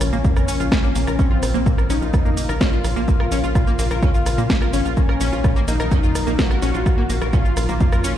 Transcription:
Already playing: synth drone A#2 A#3, analog synth pad C#3 F3 A#3 F5, analog synth lead C#4
0.01 analog synth bass A#1, cross-stick, open hi-hat, shaker
0.13 analog synth bass A#1, synth arpeggio sound A#3, shaker
0.24 analog synth bass F2, synth arpeggio sound A#3, kick, shaker
0.36 synth arpeggio sound A#4, cross-stick, shaker
0.48 analog synth bass A#1, synth arpeggio sound C#4, open hi-hat, shaker
0.60 analog synth bass A#1, synth arpeggio sound F4, shaker
0.72 analog synth bass A#1, kick, cross-stick, snare, shaker
0.83 synth arpeggio sound A#3, shaker
0.95 analog synth bass A#1, synth arpeggio sound A#3, open hi-hat, shaker
1.07 analog synth bass A#1, synth arpeggio sound A#4, cross-stick, shaker
1.19 analog synth bass A#1, analog synth lead C4, synth arpeggio sound C#4, kick, shaker
1.31 analog synth bass A#1, synth arpeggio sound F4
1.43 analog synth bass A#1, cross-stick, open hi-hat, shaker
1.54 analog synth bass A#1, synth arpeggio sound A#3, shaker
1.66 analog synth bass A#2, synth arpeggio sound A#3, kick, shaker
1.78 synth arpeggio sound A#4, cross-stick, shaker
1.90 analog synth bass A#1, synth arpeggio sound C#4, analog synth lead D#4, open hi-hat, shaker
2.02 analog synth bass A#1, synth arpeggio sound F4, shaker
2.14 analog synth bass F2, kick, cross-stick, shaker
2.25 synth arpeggio sound A#3, shaker
2.37 analog synth bass A#1, synth arpeggio sound A#3, open hi-hat, shaker
2.49 analog synth bass A#1, synth arpeggio sound A#4, cross-stick, shaker
2.61 analog synth bass A#1, synth arpeggio sound C#4, analog synth lead F4, kick, snare, shaker
2.73 synth arpeggio sound F4, shaker
2.84 analog synth bass A#1, cross-stick, open hi-hat, shaker
2.96 analog synth bass A#1, synth arpeggio sound A#3, shaker
3.08 analog synth bass A#1, synth arpeggio sound A#3, kick, shaker
3.20 analog synth bass A#1, synth arpeggio sound A#4, cross-stick
3.32 analog synth bass A#1, synth arpeggio sound C#4, open hi-hat, shaker
3.43 analog synth bass A#1, synth arpeggio sound F4, shaker
3.55 analog synth bass A#2, analog synth lead F4, kick, cross-stick, shaker
3.67 synth arpeggio sound A#3, shaker
3.79 analog synth bass A#1, synth arpeggio sound A#3, open hi-hat, shaker
3.91 analog synth bass A#1, synth arpeggio sound A#4, cross-stick, shaker
4.02 analog synth bass F2, synth arpeggio sound C#4, kick, shaker
4.14 synth arpeggio sound F4, shaker
4.26 analog synth bass A#1, cross-stick, open hi-hat, shaker
4.38 analog synth bass A#2, synth arpeggio sound A#3, shaker
4.50 analog synth bass A#1, synth arpeggio sound A#3, kick, snare, shaker
4.62 synth arpeggio sound A#4, cross-stick, shaker
4.73 analog synth bass G#1, synth arpeggio sound C#4, open hi-hat, shaker
4.85 analog synth bass A#1, synth arpeggio sound F4, shaker
4.97 analog synth bass A#1, analog synth pad D#3 F#3, synth arpeggio sound A#3, analog synth lead C#4, kick, shaker
5.09 analog synth bass A#1, synth arpeggio sound A#4, cross-stick
5.21 analog synth bass A#1, synth arpeggio sound C#4, open hi-hat, shaker
5.32 analog synth bass A#1, synth arpeggio sound F4, shaker
5.44 analog synth bass A#2, kick, cross-stick, shaker
5.56 synth arpeggio sound A#3, shaker
5.68 analog synth bass A#1, synth arpeggio sound A#3, analog synth lead D#4, open hi-hat, shaker
5.80 analog synth bass A#1, synth arpeggio sound A#4, cross-stick, shaker
5.91 analog synth bass F2, synth arpeggio sound C#4, kick, shaker
6.03 synth arpeggio sound F4, shaker
6.15 analog synth bass A#1, cross-stick, open hi-hat, shaker
6.27 analog synth bass A#1, synth arpeggio sound A#3, shaker
6.39 analog synth bass A#1, synth arpeggio sound A#3, analog synth lead F#4, kick, snare, shaker
6.51 synth arpeggio sound A#4, cross-stick, shaker
6.62 analog synth bass A#1, synth arpeggio sound C#4, open hi-hat, shaker
6.74 analog synth bass A#1, synth arpeggio sound F4, shaker
6.86 analog synth bass A#1, kick, cross-stick, shaker
6.98 analog synth bass A#1, synth arpeggio sound A#3
7.09 analog synth bass A#1, synth arpeggio sound A#3, open hi-hat, shaker
7.21 analog synth bass A#1, synth arpeggio sound A#4, cross-stick, shaker
7.33 analog synth bass A#2, synth arpeggio sound C#4, analog synth lead F4, kick, shaker
7.45 synth arpeggio sound F4, shaker
7.57 analog synth bass A#1, cross-stick, open hi-hat, shaker
7.69 analog synth bass A#1, synth arpeggio sound A#3, shaker
7.80 analog synth bass F2, synth arpeggio sound A#3, kick, shaker
7.92 synth arpeggio sound A#4, cross-stick, shaker
8.04 analog synth bass A#1, synth arpeggio sound C#4, open hi-hat, shaker

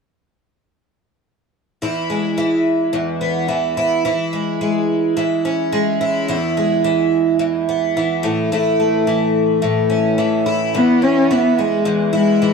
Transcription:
1.82 twelve-string acoustic guitar E2 E4
2.10 twelve-string acoustic guitar G#3
2.38 twelve-string acoustic guitar E3
2.93 twelve-string acoustic guitar E2
3.21 twelve-string acoustic guitar B3
3.48 twelve-string acoustic guitar E3
3.77 twelve-string acoustic guitar E4
4.05 twelve-string acoustic guitar E3 E4
4.33 twelve-string acoustic guitar G#3
4.61 twelve-string acoustic guitar G#3
5.17 twelve-string acoustic guitar E3
5.45 twelve-string acoustic guitar C#4
5.72 twelve-string acoustic guitar G#3
6.01 twelve-string acoustic guitar E4
6.28 twelve-string acoustic guitar E2 E4
6.57 twelve-string acoustic guitar G#3
6.84 twelve-string acoustic guitar E3
7.39 twelve-string acoustic guitar E2
7.69 twelve-string acoustic guitar B3
7.97 twelve-string acoustic guitar E3
8.23 twelve-string acoustic guitar A2
8.52 twelve-string acoustic guitar A2 E4
8.80 twelve-string acoustic guitar A3
9.07 twelve-string acoustic guitar E3
9.62 twelve-string acoustic guitar A2
9.90 twelve-string acoustic guitar C#4
10.18 twelve-string acoustic guitar E3
10.46 twelve-string acoustic guitar E4
10.74 twelve-string acoustic guitar E2, cello B3
11.02 twelve-string acoustic guitar B3, cello C#4
11.31 twelve-string acoustic guitar E3, cello B3
11.59 twelve-string acoustic guitar G#3, cello G#3
11.85 twelve-string acoustic guitar E2
12.13 cello G#3, twelve-string acoustic guitar E4
12.42 twelve-string acoustic guitar E3

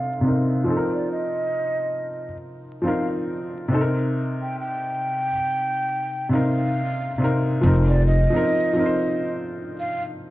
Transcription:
Already playing: felt piano C3 C4 D#4 A4, flute F5
0.21 felt piano C3 C4 D#4
0.28 felt piano A#4
0.64 felt piano F3 C4
0.68 felt piano D#4 A4
0.77 felt piano A#4
0.94 flute D5
1.11 flute D#5
2.82 felt piano F3 C4, flute F5
2.86 felt piano D#4 A#4
3.68 felt piano C3 C4
3.72 felt piano D#4 A4
3.81 felt piano A#4
4.42 flute G5
4.59 flute G5
6.29 felt piano C3 C4 D#4, flute F5
6.35 felt piano A#4
7.18 felt piano C3 C4 D#4
7.24 felt piano A#4
7.61 upright bass F1, felt piano F3 C4
7.65 felt piano D#4 A#4
7.88 flute D5
8.06 flute D#5
8.30 felt piano F3 C4 D#4
8.36 felt piano A#4
8.73 felt piano F3 C4
8.77 felt piano D#4 A#4
8.86 felt piano C5
9.80 flute F5

